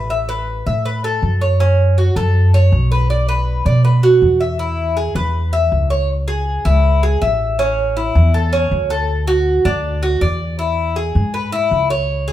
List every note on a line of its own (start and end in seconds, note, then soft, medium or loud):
0.00 0.60 A1 medium
0.10 0.28 E5 medium
0.29 0.65 B4 medium
0.66 1.19 A2 medium
0.66 0.85 E5 medium
0.85 1.03 B4 medium
1.04 1.40 A4 medium
1.22 2.10 F#2 medium
1.41 1.59 C#5 medium
1.60 1.96 C#4 medium
1.98 2.16 F#4 medium
2.16 2.68 F#2 medium
2.16 2.53 A4 medium
2.54 2.90 C#5 medium
2.72 3.60 B1 medium
2.92 3.09 B4 medium
3.10 3.28 D5 medium
3.29 3.65 B4 medium
3.65 4.18 B2 medium
3.65 3.84 D5 medium
3.85 4.03 B4 medium
4.03 4.40 F#4 medium
4.22 5.10 E2 medium
4.40 4.59 E5 medium
4.59 4.96 E4 medium
4.97 5.15 G#4 medium
5.15 5.68 E2 medium
5.15 5.52 B4 medium
5.53 5.89 E5 medium
5.72 6.59 C#2 medium
5.90 6.08 C#5 medium
6.28 6.64 G#4 medium
6.65 7.18 C#2 medium
6.65 7.02 E4 medium
7.03 7.21 G#4 medium
7.22 8.09 A1 medium
7.22 7.58 E5 medium
7.59 7.95 C#4 medium
7.97 8.33 E4 medium
8.15 8.68 E2 medium
8.34 8.52 A4 medium
8.53 8.89 C#4 medium
8.71 9.59 D2 medium
8.90 9.27 A4 medium
9.27 9.64 F#4 medium
9.65 10.17 D2 medium
9.65 10.01 D4 medium
10.03 10.21 F#4 medium
10.21 11.09 E2 medium
10.21 10.58 D5 medium
10.59 10.95 E4 medium
10.96 11.33 G#4 medium
11.15 11.67 G#2 medium
11.34 11.52 B4 medium
11.52 11.89 E4 medium
11.71 12.33 C#2 medium
11.90 12.27 C#5 medium
12.28 12.33 G#4 medium